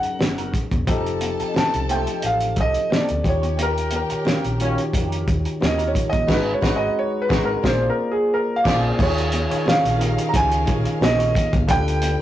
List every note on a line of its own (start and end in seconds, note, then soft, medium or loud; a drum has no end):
0.00 0.89 F#3 medium
0.00 0.89 C#4 medium
0.00 0.88 D#4 medium
0.00 0.89 G#4 medium
0.00 0.49 A#4 medium
0.00 0.89 A#4 loud
0.00 0.51 F#5 loud
0.00 0.48 A#5 loud
0.00 muted clean electric guitar stroke soft
0.00 closed hi-hat soft
0.19 0.51 F#1 medium
0.19 muted clean electric guitar stroke soft
0.19 snare loud
0.19 high conga medium
0.38 0.52 D#4 medium
0.38 0.53 F#4 medium
0.38 0.53 A#4 medium
0.38 closed hi-hat soft
0.53 muted clean electric guitar stroke soft
0.53 kick medium
0.53 closed hi-hat medium
0.71 0.88 E1 medium
0.71 muted clean electric guitar stroke soft
0.71 kick medium
0.71 closed hi-hat soft
0.71 high conga medium
0.87 1.34 F1 loud
0.87 1.82 F3 loud
0.87 1.05 C4 medium
0.87 1.82 C4 medium
0.87 1.82 D#4 loud
0.87 1.05 D#4 medium
0.87 1.82 G4 loud
0.87 2.87 A4 loud
0.87 1.06 A4 medium
0.87 1.83 A4 loud
0.87 2.87 A5 loud
0.87 kick loud
0.87 closed hi-hat medium
0.87 muted conga soft
1.06 closed hi-hat soft
1.21 muted clean electric guitar stroke soft
1.21 closed hi-hat medium
1.21 muted conga soft
1.40 1.52 C4 soft
1.40 1.52 D#4 soft
1.40 1.52 A4 soft
1.40 muted fingered electric bass stroke soft
1.40 closed hi-hat soft
1.54 1.71 F3 medium
1.54 1.71 A3 medium
1.54 1.70 C4 medium
1.54 1.73 C4 medium
1.54 1.73 D#4 medium
1.54 1.74 A4 medium
1.54 1.87 A5 medium
1.54 muted fingered electric bass stroke soft
1.54 snare loud
1.54 high conga medium
1.74 2.04 C2 medium
1.74 closed hi-hat soft
1.88 2.10 F3 medium
1.88 3.15 F3 medium
1.88 2.10 A3 medium
1.88 2.10 C4 medium
1.88 3.15 C4 medium
1.88 3.15 D#4 medium
1.88 3.16 G4 medium
1.88 3.16 A4 medium
1.88 2.25 G5 loud
1.88 muted clean electric guitar stroke soft
1.88 closed hi-hat medium
1.88 muted conga soft
2.07 2.20 C4 soft
2.07 2.19 D#4 soft
2.07 2.19 A4 soft
2.07 closed hi-hat soft
2.22 2.54 A1 medium
2.22 muted clean electric guitar stroke soft
2.22 closed hi-hat medium
2.26 2.59 F5 medium
2.40 closed hi-hat medium
2.56 2.73 C2 medium
2.56 2.70 C4 medium
2.56 2.71 D#4 medium
2.56 2.71 A4 medium
2.56 kick medium
2.56 closed hi-hat medium
2.60 2.93 D#5 medium
2.74 muted clean electric guitar stroke soft
2.74 closed hi-hat soft
2.90 3.08 C4 medium
2.90 3.08 D#4 medium
2.90 3.09 A4 medium
2.90 snare loud
2.90 high conga medium
2.95 3.28 D5 medium
3.09 3.23 D2 medium
3.09 closed hi-hat soft
3.23 4.50 D#3 medium
3.23 4.50 D#4 medium
3.23 4.51 F4 medium
3.23 5.23 G4 medium
3.23 4.51 G4 medium
3.23 4.51 C#5 medium
3.23 5.23 G5 loud
3.23 muted clean electric guitar stroke soft
3.23 kick medium
3.23 closed hi-hat medium
3.28 3.61 C#5 medium
3.42 3.55 C#4 soft
3.42 3.54 G4 soft
3.42 3.54 C#5 soft
3.42 closed hi-hat soft
3.42 high conga medium
3.57 3.75 C#4 medium
3.57 3.75 G4 medium
3.57 3.74 A#4 medium
3.57 closed hi-hat loud
3.57 muted conga medium
3.62 3.94 A#4 medium
3.75 muted clean electric guitar stroke soft
3.75 closed hi-hat medium
3.91 muted clean electric guitar stroke soft
3.91 closed hi-hat medium
3.91 muted conga soft
3.96 4.58 A#4 medium
4.10 4.23 C#4 soft
4.10 4.22 G4 medium
4.10 4.22 A#4 medium
4.10 muted fingered electric bass stroke soft
4.10 closed hi-hat medium
4.25 4.42 G3 medium
4.25 4.42 A#3 medium
4.25 4.57 C#4 medium
4.25 4.42 C#4 medium
4.25 4.58 G4 medium
4.25 4.58 A#4 medium
4.25 muted fingered electric bass stroke soft
4.25 snare loud
4.25 high conga medium
4.44 4.75 A#1 medium
4.44 closed hi-hat medium
4.60 5.59 D#3 medium
4.60 4.82 G3 medium
4.60 4.82 A#3 medium
4.60 4.82 C#4 loud
4.60 5.60 D#4 medium
4.60 5.60 F4 medium
4.60 4.67 F#4 medium
4.60 5.61 C#5 medium
4.60 muted clean electric guitar stroke soft
4.60 closed hi-hat medium
4.60 muted conga soft
4.68 5.61 G4 medium
4.78 muted clean electric guitar stroke soft
4.78 closed hi-hat medium
4.93 5.24 F2 medium
4.93 5.25 C#4 medium
4.93 5.25 G4 medium
4.93 5.26 A#4 medium
4.93 kick medium
4.93 closed hi-hat medium
5.12 closed hi-hat medium
5.27 5.44 D#2 medium
5.27 muted clean electric guitar stroke soft
5.27 kick medium
5.27 closed hi-hat medium
5.45 muted clean electric guitar stroke soft
5.45 closed hi-hat soft
5.60 5.92 D#2 medium
5.60 6.23 D#3 medium
5.60 6.24 D#4 medium
5.60 6.24 F4 medium
5.60 6.24 G4 medium
5.60 5.95 A#4 medium
5.60 6.24 C#5 medium
5.60 5.95 A#5 medium
5.60 muted clean electric guitar stroke soft
5.60 snare loud
5.60 high conga medium
5.66 5.87 D#5 medium
5.78 5.93 C#4 medium
5.78 5.94 G4 medium
5.78 5.94 A#4 medium
5.78 closed hi-hat medium
5.88 6.09 C#5 medium
5.94 muted clean electric guitar stroke soft
5.94 kick medium
5.94 closed hi-hat medium
6.09 6.27 G1 medium
6.09 6.31 D#5 medium
6.09 muted clean electric guitar stroke soft
6.09 kick medium
6.09 closed hi-hat soft
6.09 high conga medium
6.27 6.52 G#1 loud
6.27 6.51 G#3 loud
6.27 6.46 G#3 medium
6.27 6.46 B3 medium
6.27 6.51 D#4 medium
6.27 6.52 D#4 medium
6.27 6.47 D#4 medium
6.27 6.52 F#4 loud
6.27 6.52 F#4 medium
6.27 6.52 B4 loud
6.27 6.53 B4 medium
6.27 6.52 F#5 loud
6.27 kick loud
6.27 snare loud
6.27 crash medium
6.32 6.54 B4 medium
6.54 6.76 C#5 medium
6.62 6.86 G#1 loud
6.62 6.86 G#3 loud
6.62 6.80 G#3 medium
6.62 6.80 B3 medium
6.62 6.86 D#4 loud
6.62 6.80 D#4 medium
6.62 6.87 D#4 medium
6.62 6.86 F#4 medium
6.62 6.86 F#4 loud
6.62 6.86 F#4 medium
6.62 6.86 B4 medium
6.62 6.86 B4 loud
6.62 6.85 F#5 medium
6.62 kick loud
6.62 snare loud
6.76 6.96 D#5 medium
6.99 7.21 C#5 medium
7.22 7.43 B4 medium
7.29 7.54 G#1 loud
7.29 7.53 G#3 loud
7.29 7.48 G#3 medium
7.29 7.53 D#4 medium
7.29 7.48 D#4 medium
7.29 7.54 D#4 medium
7.29 7.53 F#4 loud
7.29 7.54 F#4 medium
7.29 7.53 B4 medium
7.29 7.53 F#5 loud
7.29 kick loud
7.29 snare loud
7.45 7.66 A#4 medium
7.63 7.88 A#1 loud
7.63 7.87 A#3 loud
7.63 7.87 D4 medium
7.63 7.87 F4 medium
7.63 7.88 F4 loud
7.63 7.87 G#4 medium
7.63 7.88 G#4 medium
7.63 7.88 C5 medium
7.63 7.88 C5 loud
7.63 7.88 D5 loud
7.63 7.87 F5 medium
7.63 kick medium
7.63 snare loud
7.67 7.87 C5 medium
7.90 8.11 A#4 medium
8.12 8.33 G#4 medium
8.34 8.56 A#4 medium
8.56 8.97 F5 medium
8.64 8.89 A#1 loud
8.64 8.89 A#3 medium
8.64 8.89 D4 medium
8.64 8.89 F4 loud
8.64 8.89 G#4 medium
8.64 8.89 G#4 loud
8.64 8.89 C5 medium
8.64 8.88 D5 medium
8.64 8.89 D5 medium
8.64 8.89 F5 loud
8.64 kick medium
8.64 snare medium
8.64 crash medium
8.98 9.45 D#2 loud
8.98 9.46 D#3 loud
8.98 11.65 C#4 medium
8.98 9.46 D#4 medium
8.98 9.20 F4 medium
8.98 9.47 F4 medium
8.98 9.17 G#4 medium
8.98 9.47 G#4 medium
8.98 11.65 A#4 medium
8.98 9.47 C#5 loud
8.98 9.15 C#5 medium
8.98 9.70 C#5 medium
8.98 11.65 F5 loud
8.98 kick loud
8.98 crash medium
8.98 muted conga medium
9.16 muted clean electric guitar stroke soft
9.16 closed hi-hat medium
9.32 muted clean electric guitar stroke soft
9.32 closed hi-hat medium
9.32 muted conga medium
9.50 9.96 D#3 medium
9.50 9.96 D#4 medium
9.50 9.97 F4 medium
9.50 9.63 F4 medium
9.50 9.97 G#4 medium
9.50 9.63 G#4 medium
9.50 9.62 C#5 medium
9.50 9.97 C#5 medium
9.50 muted fingered electric bass stroke soft
9.50 closed hi-hat medium
9.66 9.97 F4 medium
9.66 9.98 G#4 medium
9.66 9.98 C#5 medium
9.66 10.24 F5 medium
9.66 muted fingered electric bass stroke soft
9.66 snare loud
9.66 high conga medium
9.85 10.15 A#1 medium
9.85 closed hi-hat soft
9.99 10.62 D#3 medium
9.99 10.62 D#4 medium
9.99 10.62 F4 medium
9.99 10.07 G4 medium
9.99 10.63 D#5 medium
9.99 muted clean electric guitar stroke soft
9.99 closed hi-hat medium
9.99 muted conga soft
10.07 10.66 G#4 medium
10.18 muted clean electric guitar stroke soft
10.18 closed hi-hat medium
10.29 10.35 A#5 medium
10.33 10.64 C#2 loud
10.33 10.46 E4 medium
10.33 10.48 G4 medium
10.33 10.48 C5 medium
10.33 11.04 G#5 medium
10.33 kick medium
10.33 closed hi-hat medium
10.46 10.65 F4 medium
10.46 10.65 G#4 medium
10.46 10.66 C#5 medium
10.52 closed hi-hat soft
10.66 10.84 A#1 medium
10.66 11.61 D#3 medium
10.66 11.61 D#4 medium
10.66 11.61 F4 medium
10.66 11.61 G#4 medium
10.66 11.61 C#5 medium
10.66 muted clean electric guitar stroke soft
10.66 kick medium
10.66 closed hi-hat medium
10.85 muted clean electric guitar stroke soft
10.85 closed hi-hat soft
11.00 11.31 A#1 medium
11.00 11.51 D#5 medium
11.00 muted clean electric guitar stroke soft
11.00 snare loud
11.00 high conga medium
11.19 11.33 F4 medium
11.19 11.33 G#4 medium
11.19 11.34 C#5 medium
11.19 closed hi-hat medium
11.34 muted clean electric guitar stroke soft
11.34 kick medium
11.34 closed hi-hat medium
11.34 high conga soft
11.52 11.67 C#2 medium
11.52 muted clean electric guitar stroke soft
11.52 kick medium
11.52 closed hi-hat soft
11.52 high conga medium
11.67 12.15 D2 loud
11.67 12.22 D3 medium
11.67 12.22 D4 medium
11.67 11.86 F4 medium
11.67 12.22 F4 medium
11.67 12.22 G4 medium
11.67 11.86 A4 medium
11.67 12.22 A4 medium
11.67 12.22 B4 medium
11.67 12.22 B4 loud
11.67 11.86 B4 medium
11.67 12.22 G5 loud
11.67 kick loud
11.67 closed hi-hat loud
11.67 muted conga medium
11.88 closed hi-hat medium
12.02 muted clean electric guitar stroke soft
12.02 closed hi-hat medium
12.02 muted conga medium